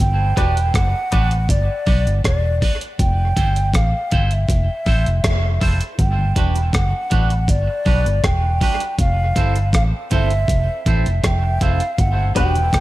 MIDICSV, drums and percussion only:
0, 0, Header, 1, 2, 480
1, 0, Start_track
1, 0, Key_signature, 1, "major"
1, 0, Tempo, 749344
1, 1916, Time_signature, 4, 2, 24, 8
1, 8200, End_track
2, 0, Start_track
2, 0, Title_t, "Drums"
2, 0, Note_on_c, 9, 36, 105
2, 0, Note_on_c, 9, 42, 92
2, 61, Note_off_c, 9, 36, 0
2, 63, Note_off_c, 9, 42, 0
2, 237, Note_on_c, 9, 36, 97
2, 240, Note_on_c, 9, 42, 82
2, 301, Note_off_c, 9, 36, 0
2, 304, Note_off_c, 9, 42, 0
2, 366, Note_on_c, 9, 42, 56
2, 430, Note_off_c, 9, 42, 0
2, 474, Note_on_c, 9, 36, 117
2, 480, Note_on_c, 9, 42, 91
2, 483, Note_on_c, 9, 37, 91
2, 538, Note_off_c, 9, 36, 0
2, 544, Note_off_c, 9, 42, 0
2, 547, Note_off_c, 9, 37, 0
2, 717, Note_on_c, 9, 42, 72
2, 721, Note_on_c, 9, 36, 97
2, 781, Note_off_c, 9, 42, 0
2, 785, Note_off_c, 9, 36, 0
2, 840, Note_on_c, 9, 42, 50
2, 904, Note_off_c, 9, 42, 0
2, 954, Note_on_c, 9, 36, 120
2, 960, Note_on_c, 9, 42, 101
2, 1018, Note_off_c, 9, 36, 0
2, 1024, Note_off_c, 9, 42, 0
2, 1195, Note_on_c, 9, 46, 52
2, 1198, Note_on_c, 9, 36, 96
2, 1259, Note_off_c, 9, 46, 0
2, 1262, Note_off_c, 9, 36, 0
2, 1326, Note_on_c, 9, 42, 50
2, 1390, Note_off_c, 9, 42, 0
2, 1438, Note_on_c, 9, 36, 93
2, 1440, Note_on_c, 9, 42, 93
2, 1443, Note_on_c, 9, 37, 107
2, 1502, Note_off_c, 9, 36, 0
2, 1504, Note_off_c, 9, 42, 0
2, 1507, Note_off_c, 9, 37, 0
2, 1679, Note_on_c, 9, 36, 98
2, 1680, Note_on_c, 9, 46, 77
2, 1743, Note_off_c, 9, 36, 0
2, 1744, Note_off_c, 9, 46, 0
2, 1802, Note_on_c, 9, 42, 59
2, 1866, Note_off_c, 9, 42, 0
2, 1917, Note_on_c, 9, 36, 117
2, 1918, Note_on_c, 9, 42, 87
2, 1981, Note_off_c, 9, 36, 0
2, 1982, Note_off_c, 9, 42, 0
2, 2156, Note_on_c, 9, 36, 96
2, 2158, Note_on_c, 9, 42, 92
2, 2220, Note_off_c, 9, 36, 0
2, 2222, Note_off_c, 9, 42, 0
2, 2282, Note_on_c, 9, 42, 54
2, 2346, Note_off_c, 9, 42, 0
2, 2393, Note_on_c, 9, 36, 111
2, 2399, Note_on_c, 9, 42, 93
2, 2402, Note_on_c, 9, 37, 96
2, 2457, Note_off_c, 9, 36, 0
2, 2463, Note_off_c, 9, 42, 0
2, 2466, Note_off_c, 9, 37, 0
2, 2636, Note_on_c, 9, 42, 67
2, 2640, Note_on_c, 9, 36, 99
2, 2700, Note_off_c, 9, 42, 0
2, 2704, Note_off_c, 9, 36, 0
2, 2759, Note_on_c, 9, 42, 47
2, 2823, Note_off_c, 9, 42, 0
2, 2873, Note_on_c, 9, 36, 111
2, 2880, Note_on_c, 9, 42, 90
2, 2937, Note_off_c, 9, 36, 0
2, 2944, Note_off_c, 9, 42, 0
2, 3114, Note_on_c, 9, 46, 53
2, 3116, Note_on_c, 9, 36, 93
2, 3178, Note_off_c, 9, 46, 0
2, 3180, Note_off_c, 9, 36, 0
2, 3244, Note_on_c, 9, 42, 47
2, 3308, Note_off_c, 9, 42, 0
2, 3356, Note_on_c, 9, 36, 94
2, 3356, Note_on_c, 9, 42, 86
2, 3359, Note_on_c, 9, 37, 114
2, 3420, Note_off_c, 9, 36, 0
2, 3420, Note_off_c, 9, 42, 0
2, 3423, Note_off_c, 9, 37, 0
2, 3596, Note_on_c, 9, 36, 97
2, 3596, Note_on_c, 9, 46, 79
2, 3660, Note_off_c, 9, 46, 0
2, 3661, Note_off_c, 9, 36, 0
2, 3719, Note_on_c, 9, 42, 67
2, 3783, Note_off_c, 9, 42, 0
2, 3835, Note_on_c, 9, 36, 106
2, 3836, Note_on_c, 9, 42, 82
2, 3899, Note_off_c, 9, 36, 0
2, 3900, Note_off_c, 9, 42, 0
2, 4074, Note_on_c, 9, 36, 96
2, 4075, Note_on_c, 9, 42, 91
2, 4139, Note_off_c, 9, 36, 0
2, 4139, Note_off_c, 9, 42, 0
2, 4199, Note_on_c, 9, 42, 55
2, 4264, Note_off_c, 9, 42, 0
2, 4312, Note_on_c, 9, 36, 103
2, 4318, Note_on_c, 9, 42, 97
2, 4321, Note_on_c, 9, 37, 96
2, 4376, Note_off_c, 9, 36, 0
2, 4382, Note_off_c, 9, 42, 0
2, 4386, Note_off_c, 9, 37, 0
2, 4555, Note_on_c, 9, 42, 68
2, 4559, Note_on_c, 9, 36, 101
2, 4619, Note_off_c, 9, 42, 0
2, 4623, Note_off_c, 9, 36, 0
2, 4678, Note_on_c, 9, 42, 48
2, 4742, Note_off_c, 9, 42, 0
2, 4792, Note_on_c, 9, 36, 110
2, 4797, Note_on_c, 9, 42, 94
2, 4856, Note_off_c, 9, 36, 0
2, 4861, Note_off_c, 9, 42, 0
2, 5033, Note_on_c, 9, 46, 50
2, 5036, Note_on_c, 9, 36, 89
2, 5097, Note_off_c, 9, 46, 0
2, 5100, Note_off_c, 9, 36, 0
2, 5165, Note_on_c, 9, 42, 53
2, 5229, Note_off_c, 9, 42, 0
2, 5276, Note_on_c, 9, 36, 107
2, 5277, Note_on_c, 9, 42, 90
2, 5279, Note_on_c, 9, 37, 119
2, 5340, Note_off_c, 9, 36, 0
2, 5341, Note_off_c, 9, 42, 0
2, 5344, Note_off_c, 9, 37, 0
2, 5517, Note_on_c, 9, 36, 97
2, 5518, Note_on_c, 9, 46, 81
2, 5581, Note_off_c, 9, 36, 0
2, 5582, Note_off_c, 9, 46, 0
2, 5639, Note_on_c, 9, 42, 62
2, 5704, Note_off_c, 9, 42, 0
2, 5756, Note_on_c, 9, 36, 110
2, 5757, Note_on_c, 9, 42, 89
2, 5820, Note_off_c, 9, 36, 0
2, 5821, Note_off_c, 9, 42, 0
2, 5995, Note_on_c, 9, 36, 91
2, 5997, Note_on_c, 9, 42, 87
2, 6059, Note_off_c, 9, 36, 0
2, 6061, Note_off_c, 9, 42, 0
2, 6121, Note_on_c, 9, 42, 57
2, 6185, Note_off_c, 9, 42, 0
2, 6233, Note_on_c, 9, 36, 107
2, 6239, Note_on_c, 9, 42, 97
2, 6243, Note_on_c, 9, 37, 96
2, 6297, Note_off_c, 9, 36, 0
2, 6303, Note_off_c, 9, 42, 0
2, 6307, Note_off_c, 9, 37, 0
2, 6475, Note_on_c, 9, 42, 69
2, 6480, Note_on_c, 9, 36, 95
2, 6539, Note_off_c, 9, 42, 0
2, 6544, Note_off_c, 9, 36, 0
2, 6601, Note_on_c, 9, 42, 48
2, 6665, Note_off_c, 9, 42, 0
2, 6714, Note_on_c, 9, 36, 105
2, 6722, Note_on_c, 9, 42, 92
2, 6778, Note_off_c, 9, 36, 0
2, 6786, Note_off_c, 9, 42, 0
2, 6958, Note_on_c, 9, 36, 95
2, 6958, Note_on_c, 9, 42, 72
2, 7022, Note_off_c, 9, 36, 0
2, 7022, Note_off_c, 9, 42, 0
2, 7085, Note_on_c, 9, 42, 50
2, 7149, Note_off_c, 9, 42, 0
2, 7197, Note_on_c, 9, 36, 99
2, 7199, Note_on_c, 9, 42, 94
2, 7201, Note_on_c, 9, 37, 113
2, 7261, Note_off_c, 9, 36, 0
2, 7263, Note_off_c, 9, 42, 0
2, 7265, Note_off_c, 9, 37, 0
2, 7437, Note_on_c, 9, 42, 78
2, 7438, Note_on_c, 9, 36, 90
2, 7502, Note_off_c, 9, 36, 0
2, 7502, Note_off_c, 9, 42, 0
2, 7560, Note_on_c, 9, 42, 57
2, 7624, Note_off_c, 9, 42, 0
2, 7677, Note_on_c, 9, 36, 115
2, 7678, Note_on_c, 9, 42, 83
2, 7741, Note_off_c, 9, 36, 0
2, 7742, Note_off_c, 9, 42, 0
2, 7916, Note_on_c, 9, 36, 88
2, 7917, Note_on_c, 9, 42, 89
2, 7980, Note_off_c, 9, 36, 0
2, 7981, Note_off_c, 9, 42, 0
2, 8042, Note_on_c, 9, 42, 53
2, 8106, Note_off_c, 9, 42, 0
2, 8153, Note_on_c, 9, 36, 112
2, 8158, Note_on_c, 9, 42, 98
2, 8162, Note_on_c, 9, 37, 93
2, 8200, Note_off_c, 9, 36, 0
2, 8200, Note_off_c, 9, 37, 0
2, 8200, Note_off_c, 9, 42, 0
2, 8200, End_track
0, 0, End_of_file